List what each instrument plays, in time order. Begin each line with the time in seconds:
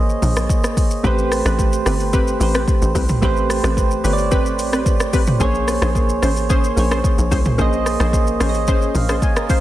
Already playing: log drum bass A1, synth keys A#3 G#4 C5 D#5
0.09 shaker
0.22 log drum bass A#1, mid tom, open hi-hat, shaker
0.36 cross-stick, shaker
0.49 kick, shaker
0.64 cross-stick, shaker
0.77 kick, open hi-hat, shaker
0.91 shaker
1.03 log drum bass A1, synth keys A3 G4 B4 C5, synth stab C4 G4 B4, kick, shaker
1.18 shaker
1.32 cross-stick, open hi-hat, shaker
1.45 log drum bass A1, synth stab C4 G4 B4, cross-stick, shaker
1.59 kick, shaker
1.73 shaker
1.86 log drum bass G1, synth stab C4 G4 B4, cross-stick, open hi-hat, shaker
2.00 shaker
2.13 synth stab C4 G4 B4, kick, shaker
2.27 shaker
2.39 log drum bass A1, synth keys A3 G4 B4 C5, open hi-hat, shaker
2.54 synth stab C4 G4 B4, cross-stick, shaker
2.68 kick, shaker
2.82 log drum bass A1, shaker
2.95 log drum bass C2, synth stab C4 G4 B4, kick, open hi-hat, shaker
3.09 mid tom, shaker
3.21 log drum bass A1, synth keys A3 G4 B4 C5, synth stab C4 G4 B4, kick, shaker
3.37 shaker
3.50 cross-stick, open hi-hat, shaker
3.63 log drum bass A1, synth stab C4 G4 B4, cross-stick, shaker
3.77 kick, shaker
3.91 shaker
4.04 log drum bass G1, synth keys A3 G4 B4 C#5, synth stab C4 G4 B4, open hi-hat, shaker
4.13 synth keys D5
4.18 shaker
4.31 synth stab C4 G4 B4, kick, shaker
4.46 shaker
4.59 log drum bass A1, open hi-hat, shaker
4.73 synth stab C4 G4 B4, cross-stick, shaker
4.86 kick, shaker
5.00 cross-stick, shaker
5.13 synth stab C4 G4 B4, kick, open hi-hat, shaker
5.27 mid tom, shaker
5.40 log drum bass A#1, synth keys A#3 G#4 C5 C#5, synth stab C#4 G#4 C5, kick, shaker
5.55 shaker
5.68 cross-stick, open hi-hat, shaker
5.82 log drum bass A#1, synth stab C#4 G#4 C5, cross-stick, shaker
5.95 kick, shaker
6.09 shaker
6.22 log drum bass A1, synth stab C#4 G#4 C5, cross-stick, open hi-hat, shaker
6.36 shaker
6.49 synth stab C#4 G#4 C5, kick, shaker
6.64 shaker
6.76 log drum bass A#1, synth keys A#3 G#4 C5 C#5, open hi-hat, shaker
6.91 synth stab C#4 G#4 C5, cross-stick, shaker
7.04 kick, shaker
7.18 log drum bass A#1, shaker
7.31 log drum bass C2, synth stab C#4 G#4 C5, kick, open hi-hat, shaker
7.45 mid tom, shaker
7.58 log drum bass A#1, synth keys A#3 G#4 C5 D#5, synth stab C#4 G#4 C5, kick, shaker
7.73 shaker
7.86 cross-stick, open hi-hat, shaker
8.00 log drum bass A#1, synth stab C#4 G#4 C5, cross-stick, shaker
8.13 kick, shaker
8.27 shaker
8.40 log drum bass A1, synth keys A#3 G#4 C5 C#5, synth stab C#4 G#4 C5, cross-stick, open hi-hat, shaker
8.49 synth keys D#5
8.54 shaker
8.67 synth stab C#4 G#4 C5, kick, shaker
8.82 shaker
8.95 log drum bass A#1, synth keys F5, mid tom, open hi-hat, shaker
9.09 synth stab C#4 G#4 C5, cross-stick, shaker
9.22 synth keys G#5, kick, shaker
9.36 synth keys A#4 D#5, cross-stick, shaker
9.49 synth stab C#4 G#4 C5, synth keys C5 F5 C6, kick, open hi-hat, shaker